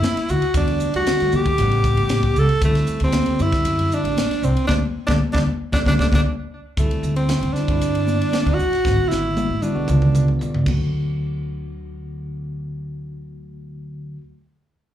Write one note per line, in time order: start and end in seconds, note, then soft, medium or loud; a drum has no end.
0.00 0.32 E4 medium
0.00 hi-hat pedal medium
0.00 ride medium
0.00 high conga medium
0.04 snare loud
0.16 muted upright bass stroke soft
0.16 snare soft
0.16 ride medium
0.29 0.40 D2 medium
0.29 0.55 F#4 medium
0.29 hi-hat pedal medium
0.42 ride medium
0.54 0.85 E2 loud
0.54 0.89 D3 medium
0.54 0.89 G3 medium
0.54 0.89 A3 medium
0.54 0.92 D4 medium
0.54 0.90 F#4 medium
0.54 kick loud
0.54 hi-hat pedal medium
0.54 ride medium
0.54 muted conga soft
0.68 ride medium
0.80 hi-hat pedal medium
0.94 1.04 D2 medium
0.94 1.16 D3 medium
0.94 1.16 G3 medium
0.94 1.17 A3 medium
0.94 1.37 F#4 medium
0.94 1.17 G4 medium
0.94 ride medium
1.07 snare loud
1.07 hi-hat pedal medium
1.07 ride medium
1.07 muted conga soft
1.07 high conga medium
1.20 1.59 D3 medium
1.20 1.59 G3 medium
1.20 1.59 A3 medium
1.20 1.59 F#4 medium
1.20 muted upright bass stroke soft
1.20 snare soft
1.20 ride medium
1.32 1.43 E3 medium
1.32 2.40 G4 loud
1.32 hi-hat pedal medium
1.32 high conga medium
1.46 kick medium
1.46 ride medium
1.58 1.90 A1 loud
1.58 2.50 C#3 medium
1.58 2.50 G3 medium
1.58 2.51 B3 medium
1.58 hi-hat pedal medium
1.58 ride medium
1.58 muted conga soft
1.62 2.51 F#5 medium
1.71 ride soft
1.84 kick medium
1.84 hi-hat pedal medium
1.84 muted conga soft
1.97 2.18 A2 medium
1.97 ride medium
2.09 snare loud
2.09 hi-hat pedal medium
2.09 ride medium
2.09 high conga medium
2.23 kick medium
2.23 ride medium
2.36 2.47 C#2 medium
2.36 2.63 A4 loud
2.36 hi-hat pedal medium
2.49 ride medium
2.62 2.82 D2 medium
2.62 2.97 D3 medium
2.62 2.97 G3 medium
2.62 3.00 A3 medium
2.62 2.97 C4 medium
2.62 kick loud
2.62 hi-hat pedal medium
2.62 ride medium
2.62 muted conga soft
2.66 2.98 E4 medium
2.75 snare soft
2.75 ride medium
2.87 hi-hat pedal medium
3.00 3.21 D2 medium
3.00 3.24 D3 medium
3.00 3.25 G3 medium
3.00 3.25 C4 medium
3.00 3.43 C4 medium
3.00 ride medium
3.04 3.25 G4 medium
3.12 snare loud
3.12 hi-hat pedal medium
3.12 ride medium
3.12 muted conga soft
3.12 high conga medium
3.26 4.18 D3 medium
3.26 4.18 G3 medium
3.26 4.18 C4 medium
3.26 ride medium
3.30 4.19 G4 medium
3.39 3.50 F#2 medium
3.39 3.95 E4 medium
3.39 hi-hat pedal medium
3.39 high conga medium
3.52 muted upright bass stroke soft
3.52 kick medium
3.52 snare soft
3.52 ride medium
3.65 3.86 F#2 medium
3.65 hi-hat pedal medium
3.65 ride medium
3.65 muted conga soft
3.79 ride medium
3.91 4.46 D4 medium
3.91 hi-hat pedal medium
3.91 muted conga soft
4.04 4.14 A1 medium
4.04 ride medium
4.17 snare loud
4.17 hi-hat pedal medium
4.17 ride medium
4.17 high conga medium
4.29 muted upright bass stroke soft
4.29 snare soft
4.29 ride medium
4.42 4.53 C2 medium
4.42 4.67 C4 medium
4.42 hi-hat pedal medium
4.57 ride medium
4.67 4.79 D2 medium
4.67 4.79 D3 medium
4.67 4.78 G3 medium
4.67 4.78 A3 medium
4.67 4.74 D4 medium
4.67 kick medium
4.67 snare medium
4.67 high conga medium
5.07 5.18 D2 medium
5.07 5.18 D3 medium
5.07 5.18 G3 medium
5.07 5.17 A3 medium
5.07 5.13 D4 medium
5.07 kick medium
5.07 snare medium
5.07 high conga loud
5.33 5.44 D2 medium
5.33 5.43 D3 medium
5.33 5.43 G3 medium
5.33 5.43 A3 medium
5.33 5.39 D4 medium
5.33 kick medium
5.33 snare medium
5.33 high conga medium
5.72 5.83 D2 medium
5.72 5.83 D3 medium
5.72 5.83 G3 medium
5.72 5.83 A3 medium
5.72 5.80 D4 medium
5.72 kick medium
5.72 snare medium
5.72 high conga medium
5.86 5.96 D2 medium
5.86 5.96 D3 medium
5.86 5.96 G3 medium
5.86 5.96 A3 medium
5.86 5.94 D4 medium
5.86 kick medium
5.86 snare medium
5.86 high conga loud
5.98 6.09 D2 medium
5.98 6.09 D3 medium
5.98 6.09 G3 medium
5.98 6.09 A3 medium
5.98 6.06 D4 medium
5.98 kick medium
5.98 snare medium
5.98 high conga medium
6.12 6.22 D2 medium
6.12 6.21 D3 medium
6.12 6.21 G3 medium
6.12 6.21 A3 medium
6.12 6.21 D4 medium
6.12 kick medium
6.12 snare medium
6.12 high conga medium
6.77 6.88 D2 medium
6.77 7.45 D3 medium
6.77 7.46 G3 medium
6.77 7.14 A3 medium
6.77 7.46 C4 medium
6.77 7.47 E4 medium
6.77 kick medium
6.77 hi-hat pedal medium
6.77 ride medium
6.77 muted conga soft
6.91 ride medium
7.03 7.34 D2 medium
7.03 hi-hat pedal medium
7.03 muted conga soft
7.16 7.55 C4 medium
7.16 ride medium
7.29 snare medium
7.29 hi-hat pedal medium
7.29 ride medium
7.29 high conga medium
7.42 7.52 D3 medium
7.42 ride medium
7.53 7.67 D3 medium
7.53 7.67 G3 medium
7.53 7.67 C4 medium
7.53 8.55 D4 medium
7.53 7.68 E4 medium
7.53 snare soft
7.53 hi-hat pedal medium
7.68 8.20 G2 medium
7.68 8.59 D3 medium
7.68 8.60 G3 medium
7.68 8.60 C4 medium
7.68 8.60 E4 medium
7.68 kick medium
7.68 ride medium
7.81 hi-hat pedal medium
7.81 ride medium
7.81 muted conga soft
7.95 ride medium
8.07 hi-hat pedal medium
8.07 high conga medium
8.21 ride medium
8.33 muted upright bass stroke soft
8.33 snare medium
8.33 hi-hat pedal medium
8.33 ride medium
8.33 high conga medium
8.46 8.56 D2 medium
8.46 ride medium
8.54 9.10 F#4 loud
8.58 8.69 A1 medium
8.58 hi-hat pedal medium
8.58 muted conga soft
8.73 snare soft
8.73 ride soft
8.85 8.95 G#1 medium
8.85 9.54 D3 medium
8.85 9.54 G#3 medium
8.85 9.54 B3 medium
8.85 9.54 F#4 medium
8.85 kick medium
8.85 snare soft
8.85 hi-hat pedal medium
8.85 muted conga soft
9.08 9.42 G#1 medium
9.08 9.64 E4 medium
9.08 snare soft
9.08 hi-hat pedal medium
9.08 muted conga soft
9.37 hi-hat pedal medium
9.37 high tom medium
9.37 high conga medium
9.50 9.60 G#2 medium
9.62 9.72 D3 medium
9.62 9.74 G#3 medium
9.62 9.74 B3 medium
9.62 10.41 D4 medium
9.62 9.74 F#4 medium
9.62 hi-hat pedal medium
9.62 high tom medium
9.74 9.86 B1 medium
9.74 9.85 D3 medium
9.74 9.88 G#3 medium
9.74 9.85 B3 medium
9.74 9.88 F#4 medium
9.87 10.30 C#2 medium
9.87 10.66 C#3 medium
9.87 10.60 D3 medium
9.87 10.66 B3 medium
9.87 10.67 F4 medium
9.87 hi-hat pedal medium
9.87 mid tom medium
9.87 muted conga soft
10.02 mid tom medium
10.15 hi-hat pedal medium
10.15 mid tom medium
10.28 mid tom medium
10.39 10.64 D5 medium
10.39 hi-hat pedal medium
10.39 mid tom medium
10.54 10.65 C#2 medium
10.54 floor tom medium
10.61 14.15 D3 medium
10.61 14.17 F#3 medium
10.66 14.20 D2 medium
10.66 14.21 A3 medium
10.66 14.23 F#4 medium
10.66 kick medium
10.66 crash medium
10.66 muted conga medium